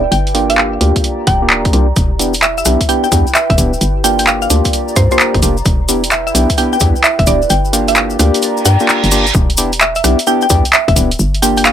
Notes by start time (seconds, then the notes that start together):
Already playing: E4 B4 G5
0.12 G1 G4 G5, closed hi-hat
0.27 closed hi-hat
0.34 A#3 D4 F4 G4, open hi-hat
0.41 D5
0.50 F5, closed hi-hat
0.58 clap
0.81 D2 A#3 D4 F4 G4, open hi-hat
0.96 A#5, kick, closed hi-hat
1.04 closed hi-hat
1.27 D1 G5, kick, open hi-hat
1.42 A#3 D4 F4 G4
1.50 clap
1.65 A#1, kick, closed hi-hat
1.73 C2 A#3 D4 F4 G4, open hi-hat
1.96 E1 E4, kick, closed hi-hat, cabasa
2.19 B3 D4 E4 G4, open hi-hat, cabasa
2.34 closed hi-hat, cabasa
2.42 E5, clap, cabasa
2.58 E5, cabasa
2.64 B1 B3 D4 E4 G4 B4 G5, cross-stick, open hi-hat, cabasa
2.81 kick, closed hi-hat, cabasa
2.89 B3 D4 E4 G4 G5, closed hi-hat, cabasa
3.04 G5, cabasa
3.12 E2 B3 D4 E4 G4, kick, open hi-hat, cabasa
3.27 cabasa
3.35 E5, clap, cabasa
3.50 E1 E5, kick, closed hi-hat
3.58 D1 B3 D4 E4 G4, open hi-hat, cabasa
3.73 cabasa
3.81 G1 G4, closed hi-hat, cabasa
4.04 A#3 D4 F4 G4 G5, open hi-hat, cabasa
4.19 G5, closed hi-hat, cabasa
4.24 D5 F5, clap, cabasa
4.42 F5, cabasa
4.50 D2 A#3 D4 F4 G4, open hi-hat, cabasa
4.65 A#5, kick, closed hi-hat, cabasa
4.73 closed hi-hat, cabasa
4.88 cabasa
4.96 G2 C5, kick, open hi-hat, cabasa
5.11 A#3 D4 F4 G4 C5, cabasa
5.19 clap, cabasa
5.34 G1, kick, closed hi-hat
5.42 F1 A#3 D4 F4 G4, open hi-hat, cabasa
5.57 cabasa
5.65 E1 E4, kick, closed hi-hat, cabasa
5.80 B4 G5
5.89 B3 D4 E4 G4, open hi-hat, cabasa
6.04 closed hi-hat, cabasa
6.11 E5, clap, cabasa
6.27 E5, cabasa
6.35 B1 B3 D4 E4 G4, open hi-hat, cabasa
6.50 kick, closed hi-hat, cabasa
6.58 B3 D4 E4 G4 G5, closed hi-hat, cabasa
6.73 G5, cabasa
6.80 E2 B3 D4 E4 G4, kick, open hi-hat, cabasa
6.96 cabasa
7.04 E5, clap, cabasa
7.19 E1 E5, kick, closed hi-hat
7.27 D1 B3 D4 E4 G4 D5, open hi-hat, cabasa
7.42 cabasa
7.50 G1 G4 G5, closed hi-hat, cabasa
7.65 cabasa
7.73 A#3 D4 F4 G4, open hi-hat, cabasa
7.88 F5, closed hi-hat, cabasa
7.95 D5, clap, cabasa
8.10 cabasa
8.19 D2 A#3 D4 F4 G4 A#5, cross-stick, open hi-hat, cabasa
8.34 closed hi-hat, cabasa
8.42 closed hi-hat, reverse cymbal, cabasa
8.57 cabasa
8.65 G2 G5, open hi-hat, cabasa
8.80 A#3 D4 F4 G4, cabasa
8.89 clap, cabasa
9.04 G1, closed hi-hat, cabasa
9.11 A#3 D4 F4 G4, open hi-hat, cabasa
9.27 closed hi-hat, cabasa
9.34 E1, kick, cabasa
9.50 closed hi-hat
9.57 B3 D4 E4 G4, open hi-hat, cabasa
9.72 closed hi-hat, cabasa
9.81 E5, clap, cabasa
9.95 E5, closed hi-hat, cabasa
10.04 B1 B3 D4 E4 G4, cross-stick, open hi-hat, cabasa
10.19 closed hi-hat, cabasa
10.27 B3 D4 E4 G4 G5, cabasa
10.41 G5, cabasa
10.50 E2 B3 D4 E4 G4, kick, open hi-hat, cabasa
10.65 closed hi-hat, cabasa
10.73 E5, clap, cabasa
10.88 E1 E5, kick, closed hi-hat
10.96 D1 B3 D4 E4 G4, open hi-hat, cabasa
11.11 closed hi-hat, cabasa
11.19 G1, cabasa
11.34 closed hi-hat
11.42 A#3 D4 F4 G4 G5, open hi-hat, cabasa
11.57 G5, closed hi-hat, cabasa
11.65 F5, clap, cabasa